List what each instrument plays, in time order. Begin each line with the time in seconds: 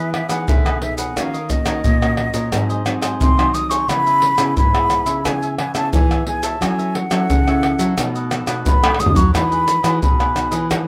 Already playing: nylon-string guitar E3 B3 G#4, cavaquinho D#5, flute E5
0.00 cavaquinho G#4 B4
0.13 cavaquinho E4 G#4 B4 D#5, flute E5, pandeiro, tamborim
0.28 nylon-string guitar E3 B3 D#4 G#4, cavaquinho G#4 B4 D#5, flute F#5, pandeiro, tamborim, maracas
0.48 nylon-string guitar B2 D3, flute E5, pandeiro, maracas, surdo
0.65 cavaquinho G#4 B4 D#5, pandeiro, tamborim, maracas
0.82 nylon-string guitar B3 D#4 G#4, flute E5, muted cavaquinho stroke, pandeiro
0.97 cavaquinho G#4 B4 D#5, flute F#5, pandeiro, maracas
1.16 nylon-string guitar D#3 A#3 C#4 F#4, cavaquinho F#4 A#4 C#5 D#5, flute F5, pandeiro, tamborim, maracas, surdo
1.34 cavaquinho A#4 C#5 D#5, pandeiro, maracas
1.49 nylon-string guitar A#3 C#4 F#4, flute D#5, muted cavaquinho stroke, pandeiro, maracas, surdo
1.65 nylon-string guitar D#3, cavaquinho A#4 C#5 D#5, pandeiro, tamborim, maracas
1.84 nylon-string guitar A#2, cavaquinho F#4 A#4 C#5 D#5, pandeiro, maracas, surdo
2.01 nylon-string guitar A#3 C#4 F#4, cavaquinho A#4 C#5 D#5, pandeiro, tamborim, maracas
2.17 pandeiro, tamborim
2.34 nylon-string guitar A#2, cavaquinho A#4 C#5 D#5, pandeiro, maracas
2.52 nylon-string guitar G#2 F#3 C4 D#4, cavaquinho F#4 G#4 C5 D#5, pandeiro, tamborim, maracas, surdo
2.69 cavaquinho G#4 C5 D#5, pandeiro, maracas
2.85 nylon-string guitar F#3 C4 D#4, cavaquinho F#4 G#4 C5 D#5, pandeiro, tamborim, maracas
3.01 nylon-string guitar G#2, cavaquinho G#4 C5 D#5, pandeiro, tamborim, maracas
3.20 nylon-string guitar C3 D#3, flute C6, pandeiro, maracas, surdo
3.37 nylon-string guitar F#3 C4 D#4, cavaquinho G#4 C5 D#5, pandeiro, tamborim, maracas
3.53 flute D#6, muted cavaquinho stroke, pandeiro, maracas
3.69 cavaquinho G#4 C5 D#5, flute C#6, pandeiro, maracas
3.88 nylon-string guitar C#3 B3 E4 G#4, cavaquinho B4 C#5 E5, flute B5, pandeiro, tamborim, maracas, surdo
4.06 cavaquinho C#5 E5, pandeiro, maracas
4.22 muted cavaquinho stroke, pandeiro
4.38 nylon-string guitar C#3 B3 E4 G#4, cavaquinho C#5 E5, pandeiro, tamborim, maracas
4.56 nylon-string guitar G#2, cavaquinho B4 C#5 E5, flute B5, pandeiro, maracas, surdo
4.74 nylon-string guitar B3 E4 G#4, cavaquinho C#5 E5, pandeiro, tamborim, maracas
4.90 pandeiro, tamborim, maracas
5.06 nylon-string guitar C#3, cavaquinho C#5 E5, pandeiro, maracas
5.24 nylon-string guitar C#3 B3 E4 G#4, cavaquinho B4 C#5 E5, flute G#5, pandeiro, tamborim, maracas, surdo
5.43 cavaquinho C#5 E5, pandeiro, maracas
5.58 cavaquinho B4 C#5 E5, flute G#5, pandeiro, tamborim
5.74 nylon-string guitar C#3 B3 E4 G#4, cavaquinho C#5 E5, flute A5, pandeiro, tamborim, maracas
5.93 nylon-string guitar G#2 E3, flute G#5, pandeiro, maracas, surdo
6.11 cavaquinho C#5 E5, pandeiro, tamborim, maracas
6.27 nylon-string guitar B3 E4 G#4, flute G#5, muted cavaquinho stroke, pandeiro
6.43 cavaquinho C#5 E5, flute A5, pandeiro, maracas
6.61 nylon-string guitar F#3 C#4 E4 A4, cavaquinho F#4 A4 C#5 E5, flute G#5, pandeiro, tamborim, maracas, surdo
6.78 cavaquinho A4 C#5 E5, pandeiro, maracas
6.95 flute F#5, muted cavaquinho stroke, pandeiro
7.11 nylon-string guitar F#3 C#4 E4 A4, cavaquinho A4 C#5 E5, pandeiro, tamborim, maracas
7.30 nylon-string guitar C#3, cavaquinho F#4 A4 C#5 E5, pandeiro, maracas, surdo
7.47 nylon-string guitar C#4 E4 A4, cavaquinho A4 C#5 E5, pandeiro, tamborim, maracas
7.63 pandeiro, tamborim
7.79 nylon-string guitar F#3, cavaquinho A4 C#5 E5, pandeiro, maracas
7.97 nylon-string guitar B2 A3 D#4 F#4, cavaquinho D#4 A4 B4 D#5, pandeiro, tamborim, maracas, surdo
8.15 cavaquinho A4 B4 D#5, pandeiro, maracas
8.31 cavaquinho D#4 A4 B4 D#5, pandeiro, tamborim, maracas
8.47 nylon-string guitar B2 A3 D#4 F#4, cavaquinho A4 B4 D#5, pandeiro, tamborim, maracas
8.65 nylon-string guitar F#2 B3, flute B5, pandeiro, maracas, surdo
8.83 nylon-string guitar A3, cavaquinho A4 B4 D#5, pandeiro, tamborim, maracas
8.94 tamborim
8.99 nylon-string guitar G#3 A3 D#4 F#4, flute D#6, muted cavaquinho stroke, pandeiro, maracas
9.06 surdo
9.15 nylon-string guitar F#3, cavaquinho A4 B4 D#5, flute C#6, pandeiro, maracas, surdo
9.33 nylon-string guitar E3 G#3 D#4 F#4, cavaquinho E4 G#4 B4 D#5, flute B5, pandeiro, tamborim, maracas, surdo
9.51 cavaquinho G#4 B4 D#5, pandeiro, maracas
9.66 muted cavaquinho stroke, pandeiro, maracas
9.83 nylon-string guitar E3 G#3 D#4 F#4, cavaquinho G#4 B4 D#5, pandeiro, tamborim, maracas
10.01 nylon-string guitar B2, cavaquinho E4 G#4 B4 D#5, flute B5, pandeiro, maracas, surdo
10.19 cavaquinho G#4 B4 D#5, pandeiro, tamborim, maracas
10.35 nylon-string guitar G#3 D#4 F#4, pandeiro, tamborim, maracas
10.51 nylon-string guitar E3, cavaquinho G#4 B4 D#5, pandeiro, maracas
10.69 nylon-string guitar E3 G#3 D#4 F#4, cavaquinho E4 G#4 B4 D#5, pandeiro, tamborim, maracas, surdo